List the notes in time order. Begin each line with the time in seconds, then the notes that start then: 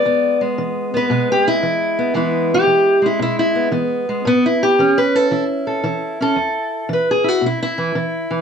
Already playing: G#3 D5
0.05 E2 B3
0.41 G#3
0.58 E3
0.94 B3 B4
1.10 B2 G#3
1.32 G4
1.48 E4
1.63 E3
1.99 B3
2.14 E2 E3 G#3 B3 E4
2.54 G4
2.67 E3
3.02 G#3 E4
3.19 B2 E4
3.39 E4
3.55 B3
3.72 E3 B3
4.09 G#3
4.25 A2 B3
4.46 E4
4.63 G4
4.79 E3 C#4
4.98 B4
5.15 E4 A4
5.31 E3 E4
5.67 A4
5.84 E3 E4
6.21 C#4 A4
6.36 E2
6.89 E3
6.93 B4
7.11 G#4
7.24 E4
7.28 F#4
7.41 B2
7.46 E4
7.62 E4
7.78 E3
7.95 E3
8.31 E3